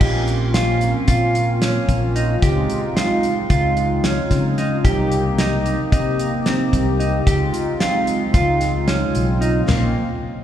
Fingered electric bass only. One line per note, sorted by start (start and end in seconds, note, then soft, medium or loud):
0.01 0.93 A#1 medium
1.08 1.77 A#2 medium
1.89 2.35 A#1 medium
2.42 2.65 C#2 medium
3.50 4.19 C#2 medium
4.31 4.86 C#3 medium
4.85 5.77 C2 loud
5.93 6.61 C3 medium
6.73 7.19 C2 medium
7.27 7.50 C#2 loud
8.34 9.03 C#2 medium
9.15 9.61 B1 medium
9.68 9.93 A#1 medium